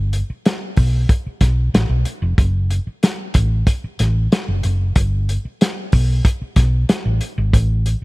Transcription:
0.00 0.21 G1 medium
0.13 closed hi-hat medium
0.30 muted fingered electric bass stroke soft
0.46 snare loud
0.46 closed hi-hat medium
0.77 1.04 B1 medium
0.77 kick medium
0.77 open hi-hat medium
1.09 kick medium
1.09 closed hi-hat medium
1.26 muted fingered electric bass stroke soft
1.41 1.68 B1 medium
1.41 kick medium
1.41 snare soft
1.41 closed hi-hat medium
1.74 1.87 A1 medium
1.74 snare loud
1.74 closed hi-hat medium
1.89 2.03 B1 medium
2.05 closed hi-hat medium
2.22 2.36 F1 medium
2.38 2.78 F#1 loud
2.38 kick loud
2.38 closed hi-hat medium
2.71 closed hi-hat medium
2.87 muted fingered electric bass stroke soft
3.03 snare medium
3.03 closed hi-hat medium
3.34 3.62 A1 medium
3.34 kick medium
3.34 closed hi-hat medium
3.67 kick medium
3.67 closed hi-hat medium
3.84 muted fingered electric bass stroke soft
3.99 4.26 A1 medium
3.99 snare soft
3.99 closed hi-hat medium
4.32 snare loud
4.32 closed hi-hat medium
4.48 4.61 F#1 medium
4.63 4.91 F#1 medium
4.63 closed hi-hat medium
4.96 5.36 G1 loud
4.96 kick medium
4.96 closed hi-hat medium
5.29 closed hi-hat medium
5.45 muted fingered electric bass stroke soft
5.61 snare medium
5.61 closed hi-hat medium
5.92 6.20 B1 medium
5.92 kick medium
5.92 open hi-hat medium
6.25 kick medium
6.25 closed hi-hat medium
6.42 muted fingered electric bass stroke soft
6.56 6.84 B1 loud
6.56 kick medium
6.56 snare soft
6.56 closed hi-hat medium
6.89 muted fingered electric bass stroke soft
6.89 snare loud
6.89 closed hi-hat medium
7.05 7.19 A1 medium
7.21 closed hi-hat medium
7.38 7.51 G#1 medium
7.53 7.94 A1 medium
7.53 kick medium
7.53 closed hi-hat medium
7.86 closed hi-hat medium

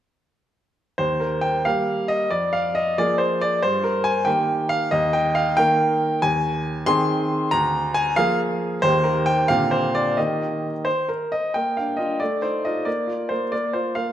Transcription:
0.98 1.63 D#2 soft
0.98 1.21 C5 medium
1.20 1.43 A#4 medium
1.41 1.65 G5 medium
1.65 2.28 G3 soft
1.65 2.28 A#3 soft
1.65 2.28 G4 soft
1.65 2.09 F5 medium
2.08 2.31 D#5 medium
2.31 2.94 F2 soft
2.31 2.53 D5 medium
2.53 2.75 F5 medium
2.75 2.96 D#5 medium
2.98 3.59 F3 soft
2.98 3.59 A#3 soft
2.98 3.59 G#4 soft
2.98 3.19 D5 medium
3.18 3.40 C5 medium
3.41 3.63 D5 medium
3.63 4.26 G2 medium
3.63 3.84 C5 medium
3.84 4.05 A#4 medium
4.04 4.26 G#5 medium
4.25 4.87 D#3 soft
4.25 4.88 A#3 soft
4.25 4.88 G4 soft
4.25 4.69 G5 medium
4.69 4.91 F5 medium
4.91 5.55 D#2 medium
4.91 5.13 D#5 medium
5.13 5.35 G5 medium
5.35 5.57 F5 medium
5.57 6.18 D#3 medium
5.57 6.18 A#3 medium
5.57 6.18 A#4 medium
5.57 6.22 G5 loud
6.22 6.85 D#2 medium
6.22 6.87 G#5 medium
6.86 7.48 D#3 medium
6.86 7.49 C4 medium
6.86 7.48 G#4 medium
6.86 7.52 C6 loud
7.51 8.16 D2 medium
7.51 7.95 A#5 loud
7.94 8.17 G#5 loud
8.16 8.79 F3 medium
8.16 8.79 A#3 medium
8.16 8.79 G#4 medium
8.16 8.39 F5 loud
8.82 9.47 D#2 medium
8.82 9.46 D#3 soft
8.82 9.46 A#3 soft
8.82 9.46 G4 soft
8.82 9.05 C5 loud
9.04 9.27 A#4 medium
9.26 9.49 G5 loud
9.48 10.15 A#2 medium
9.48 10.13 D3 soft
9.48 10.13 C4 soft
9.48 10.14 G4 soft
9.48 9.71 F5 medium
9.71 9.94 C5 medium
9.95 10.17 D5 medium
10.17 10.66 D#3 soft
10.17 10.73 A#3 soft
10.17 10.73 G4 soft
10.17 10.86 D#5 medium
10.85 11.08 C5 medium
11.09 11.32 A#4 medium
11.32 11.54 D#5 medium
11.54 12.19 A#3 soft
11.54 11.76 G5 medium
11.77 11.97 D4 soft
11.77 11.99 F5 soft
11.97 12.18 D4 soft
11.97 12.19 F4 soft
11.97 12.20 D#5 medium
12.20 12.85 A3 soft
12.20 12.42 D5 medium
12.42 12.64 D#4 soft
12.42 12.64 C5 medium
12.65 12.85 D#4 soft
12.65 12.85 F4 soft
12.65 12.87 D#5 medium
12.85 13.29 A#3 soft
12.85 13.30 D5 medium
13.07 13.43 F4 soft
13.29 13.51 A#3 soft
13.29 13.51 C5 medium
13.52 13.94 A#3 soft
13.52 13.74 D5 medium
13.73 14.09 F4 soft
13.73 13.95 C5 medium
13.95 14.12 A#3 soft
13.95 14.12 F5 medium

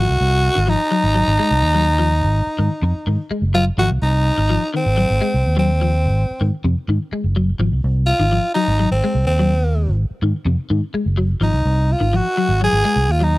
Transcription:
0.00 0.71 F#4 loud
0.09 0.18 C2 loud
0.21 0.48 C2 loud
0.55 0.74 G#1 medium
0.55 0.62 D#3 medium
0.67 0.80 F3 medium
0.67 3.31 D#4 loud
0.91 1.04 F#3 medium
1.04 1.22 G#1 medium
1.15 1.28 F#3 medium
1.28 1.37 G#1 loud
1.39 1.52 G#3 medium
1.51 1.60 C2 medium
1.62 2.24 D#2 medium
1.74 1.87 F#3 medium
1.99 2.11 F3 medium
2.22 2.41 G#1 medium
2.47 muted fingered electric bass stroke soft
2.59 2.68 G#2 medium
2.59 2.71 D#3 medium
2.82 2.91 F2 loud
2.82 muted clean electric guitar stroke medium
2.94 muted fingered electric bass stroke soft
3.07 3.16 G#2 medium
3.07 3.19 D#3 medium
3.30 3.43 G#3 medium
3.30 muted fingered electric bass stroke soft
3.42 3.69 F#1 medium
3.54 3.67 F#3 medium
3.54 3.65 F4 loud
3.78 3.87 G#1 loud
3.78 3.91 F3 medium
3.78 3.89 F#4 loud
3.90 3.99 C2 medium
4.02 4.29 C2 loud
4.02 4.70 D#4 loud
4.38 4.56 G#1 medium
4.38 muted clean electric guitar stroke medium
4.50 4.62 F3 medium
4.74 4.86 D#3 medium
4.74 5.54 C4 loud
4.86 5.04 G#1 medium
4.97 5.10 F#3 medium
5.10 5.19 G#1 loud
5.21 5.34 G#3 medium
5.34 5.43 C2 medium
5.46 6.07 D#2 medium
5.57 5.69 F#3 medium
5.57 6.49 C4 medium
5.81 5.94 F3 medium
6.06 6.24 G#1 medium
6.31 muted fingered electric bass stroke soft
6.41 6.50 G#2 medium
6.41 6.53 D#3 medium
6.64 6.73 F2 loud
6.64 6.77 C3 medium
6.77 muted fingered electric bass stroke soft
6.88 6.97 G#2 loud
6.88 7.01 D#3 medium
7.12 7.25 G#3 medium
7.12 muted fingered electric bass stroke soft
7.24 7.51 F#1 medium
7.36 7.49 F#3 medium
7.59 7.69 G#1 loud
7.59 7.72 F3 medium
7.72 7.81 C2 medium
7.84 8.11 C2 loud
8.06 8.51 F4 loud
8.19 8.38 G#1 medium
8.19 8.26 D#3 medium
8.32 8.44 F3 medium
8.54 8.68 F#3 medium
8.54 8.88 D#4 loud
8.68 8.86 G#1 medium
8.79 8.92 F#3 medium
8.91 9.00 G#1 loud
8.91 9.25 C4 medium
9.04 9.16 G#3 medium
9.15 9.24 C2 loud
9.27 9.89 D#2 medium
9.27 9.94 C4 medium
9.39 9.52 F#3 medium
9.87 10.05 G#1 medium
10.11 muted fingered electric bass stroke soft
10.22 10.31 G#2 medium
10.22 10.35 D#3 medium
10.45 10.55 F2 loud
10.45 10.59 C3 medium
10.58 muted fingered electric bass stroke soft
10.70 10.79 G#2 loud
10.70 10.83 D#3 medium
10.94 11.07 G#3 medium
10.94 muted fingered electric bass stroke soft
11.06 11.33 F#1 medium
11.17 11.30 F#3 medium
11.41 11.50 G#1 loud
11.41 11.54 F3 medium
11.41 11.94 D#4 medium
11.53 11.62 C2 medium
11.65 11.93 C2 loud
11.92 12.18 F4 medium
12.00 12.19 G#1 medium
12.00 12.07 D#3 medium
12.13 12.26 F3 medium
12.13 12.63 F#4 loud
12.37 12.50 F#3 medium
12.49 12.67 G#1 medium
12.61 12.74 F#3 medium
12.61 13.13 G#4 loud
12.73 12.82 G#1 loud
12.85 12.97 G#3 medium
12.96 13.05 C2 medium
13.08 13.38 D#2 medium
13.08 13.25 F4 loud
13.20 13.33 F#3 medium
13.20 13.38 D#4 medium

